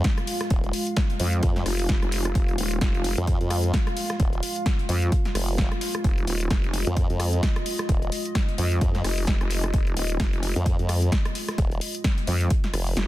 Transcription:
Already playing: G#3 F4 F5
0.04 kick, snare, closed hi-hat
0.18 cross-stick, closed hi-hat
0.27 closed hi-hat, open hi-hat
0.41 cross-stick, snare, closed hi-hat
0.50 D#1, kick, closed hi-hat
0.64 closed hi-hat
0.73 closed hi-hat, open hi-hat
0.87 closed hi-hat
0.96 kick, snare, closed hi-hat
1.10 closed hi-hat
1.20 F2, closed hi-hat, open hi-hat
1.33 closed hi-hat
1.43 F2, kick, closed hi-hat
1.56 snare, closed hi-hat
1.66 F1, cross-stick, open hi-hat
1.79 closed hi-hat, open hi-hat
1.89 kick, snare, closed hi-hat
2.02 F1, cross-stick, closed hi-hat
2.12 snare, closed hi-hat, open hi-hat
2.25 cross-stick, closed hi-hat
2.35 F1, kick, closed hi-hat
2.48 closed hi-hat
2.58 D#1, closed hi-hat, open hi-hat
2.72 closed hi-hat
2.81 F1, kick, snare, closed hi-hat
2.95 closed hi-hat
3.04 closed hi-hat, open hi-hat
3.18 F2, closed hi-hat
3.27 kick, closed hi-hat
3.41 F2, closed hi-hat
3.51 cross-stick, closed hi-hat, open hi-hat
3.64 closed hi-hat
3.74 kick, snare, closed hi-hat
3.87 cross-stick, closed hi-hat
3.97 closed hi-hat, open hi-hat
4.10 cross-stick, snare, closed hi-hat
4.20 D#1, kick, closed hi-hat
4.33 closed hi-hat
4.43 closed hi-hat, open hi-hat
4.56 closed hi-hat
4.66 kick, snare, closed hi-hat
4.79 closed hi-hat
4.89 F2, closed hi-hat, open hi-hat
5.02 closed hi-hat
5.12 kick, closed hi-hat
5.25 snare, closed hi-hat
5.35 F1, cross-stick, open hi-hat
5.48 closed hi-hat, open hi-hat
5.58 kick, snare, closed hi-hat
5.72 cross-stick, closed hi-hat
5.81 snare, closed hi-hat, open hi-hat
5.95 cross-stick
6.04 F1 D#5, kick, closed hi-hat
6.18 closed hi-hat
6.27 D#1, closed hi-hat, open hi-hat
6.41 closed hi-hat
6.50 F1, kick, snare, closed hi-hat
6.64 closed hi-hat
6.74 closed hi-hat, open hi-hat
6.87 F2, closed hi-hat
6.97 kick, closed hi-hat
7.10 F2, closed hi-hat
7.20 cross-stick, closed hi-hat, open hi-hat
7.33 closed hi-hat
7.43 kick, snare, closed hi-hat
7.56 cross-stick, closed hi-hat
7.66 closed hi-hat, open hi-hat
7.79 cross-stick, snare, closed hi-hat
7.89 D#1, kick, closed hi-hat
8.02 closed hi-hat
8.12 closed hi-hat, open hi-hat
8.25 closed hi-hat
8.35 kick, snare, closed hi-hat
8.49 closed hi-hat
8.58 F2, closed hi-hat, open hi-hat
8.72 closed hi-hat
8.81 F2, kick, closed hi-hat
8.95 snare, closed hi-hat
9.04 F1, cross-stick, open hi-hat
9.18 closed hi-hat, open hi-hat
9.27 kick, snare, closed hi-hat
9.41 F1, cross-stick, closed hi-hat
9.51 snare, closed hi-hat, open hi-hat
9.64 cross-stick
9.74 F1, kick, closed hi-hat
9.87 closed hi-hat
9.97 D#1, closed hi-hat, open hi-hat
10.10 closed hi-hat
10.20 F1, kick, snare, closed hi-hat
10.33 closed hi-hat
10.43 closed hi-hat, open hi-hat
10.56 F2, closed hi-hat
10.66 kick, closed hi-hat
10.79 F2, closed hi-hat
10.89 cross-stick, closed hi-hat, open hi-hat
11.02 closed hi-hat
11.12 kick, snare, closed hi-hat
11.25 cross-stick, closed hi-hat
11.35 closed hi-hat, open hi-hat
11.48 cross-stick, snare, closed hi-hat
11.58 D#1, kick, closed hi-hat
11.72 closed hi-hat
11.81 closed hi-hat, open hi-hat
11.95 closed hi-hat
12.04 kick, snare, closed hi-hat
12.18 closed hi-hat
12.27 F2, closed hi-hat, open hi-hat
12.41 closed hi-hat
12.50 kick, closed hi-hat
12.64 snare, closed hi-hat
12.73 F1, cross-stick, closed hi-hat, open hi-hat
12.87 open hi-hat
12.97 F1, snare, closed hi-hat

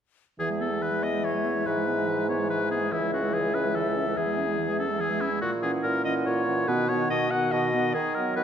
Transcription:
0.39 E2 E3 G#4 E5
0.51 G#3
0.61 B3 A4
0.71 G#3
0.81 E3 B4
0.92 G#3
1.03 B3 D#5
1.14 G#3
1.24 E3 C#5
1.34 G#3
1.45 B3
1.56 G#3
1.66 G#2 E3 B4
1.77 G#3
1.87 B3
1.98 G#3
2.08 E3
2.18 G#3
2.29 B3 C#5
2.39 G#3
2.49 E3 B4
2.60 G#3
2.71 B3 G#4
2.81 G#3
2.92 C#2 E3 E4 E5
3.03 G#3
3.13 C#4 F#4
3.23 G#3
3.33 E3 G#4
3.44 G#3
3.54 C#4 B4
3.65 G#3
3.75 E3 A4
3.86 G#3
3.97 C#4
4.07 G#3
4.16 E2 E3 G#4
4.27 G#3
4.38 C#4
4.48 G#3
4.59 E3
4.69 G#3
4.79 C#4 A4
4.90 G#3
5.00 E3 G#4
5.10 G#3
5.21 C#4 E4
5.31 G#3
5.42 A#2 F#4
5.62 E3 C#4 G#4 F#5
5.83 A#2 A#4
6.04 E3 C#4 D#5 F#5
6.26 A#2 C#5
6.46 E3 C#4 F#5
6.67 B2 D#3 B3 B4 F#5
6.89 D#3 B3 C#5 F#5
7.10 B2 D#5
7.31 D#3 B3 F#5
7.52 B2 D#5
7.73 D#3 B3 F#5
7.94 D#3 G#4
8.15 F#3 B3 A#4 F#5
8.36 D#3 B4

